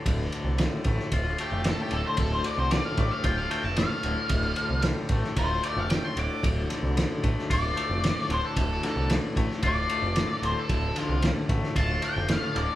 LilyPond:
<<
  \new Staff \with { instrumentName = "Lead electric guitar" } { \time 4/4 \key d \minor \tempo 4 = 113 r2 r8 g'8 a'16 g'16 a'16 c''16 | a'16 c''16 d''16 c''16 d''16 f''16 d''16 f''16 g''16 f''16 g''16 a''16 f''4~ | f''4 r4 c''8 d''16 f''16 g''16 c'''16 d'''8 | r2 d''4. c''16 a'16~ |
a'8 a'8 r4 d''4. c''16 a'16~ | a'8 f'8 r4 a''8 g''8 f''8 d''8 | }
  \new Staff \with { instrumentName = "Clean electric guitar" } { \clef bass \time 4/4 \key d \minor <d, a, d a f'>8 d8 a,8 a8 f'8 a8 a,8 d8 | d,8 d8 a,8 a8 f'8 a8 a,8 d8 | d,8 d8 a,8 a8 f'8 a8 a,8 d8 | d,8 d8 a,8 a8 f'8 a8 a,8 d8 |
d,8 d8 a,8 a8 f'8 a8 a,8 d8 | d,8 d8 a,8 a8 f'8 a8 a,8 d8 | }
  \new Staff \with { instrumentName = "Picked electric bass" } { \clef bass \time 4/4 \key d \minor d,,8 r16 c,8 r16 a,,16 r16 d,,8 r16 f,,8 r16 d,,16 r16 | d,,8 r16 c,8 r16 a,,16 r16 d,,8 r16 f,,8 r16 d,,16 r16 | d,,8 r16 c,8 r16 a,,16 r16 d,,8 r16 f,,8 r16 d,,16 r16 | d,,8 r16 c,8 r16 a,,16 r16 d,,8 r16 f,,8 r16 d,,16 r16 |
d,,8 r16 c,8 r16 a,,16 r16 d,,8 r16 f,,8 r16 d,,16 r16 | d,,8 r16 c,8 r16 a,,16 r16 d,,8 r16 f,,8 r16 d,,16 r16 | }
  \new DrumStaff \with { instrumentName = "Drums" } \drummode { \time 4/4 <bd cymr>8 cymr8 <cymr sn>8 <bd cymr>16 sn16 <bd cymr>8 cymr8 <cymr sn>8 cymr8 | <bd cymr>8 cymr8 <cymr sn>8 <bd cymr>8 <bd cymr>8 cymr8 <cymr sn>8 cymr8 | <bd cymr>8 cymr8 <cymr sn>8 <bd cymr>16 sn16 <bd cymr>8 cymr8 <cymr sn>8 cymr8 | <bd cymr>8 <cymr sn>8 <cymr sn>8 <bd cymr>16 sn16 <bd cymr>8 cymr8 <cymr sn>8 cymr8 |
<bd cymr>8 <cymr sn>8 <cymr sn>8 <bd cymr>16 sn16 <bd cymr>8 cymr8 <cymr sn>8 cymr8 | <bd cymr>8 <cymr sn>8 <cymr sn>8 <bd cymr>16 sn16 <bd cymr>8 cymr8 <cymr sn>8 cymr8 | }
>>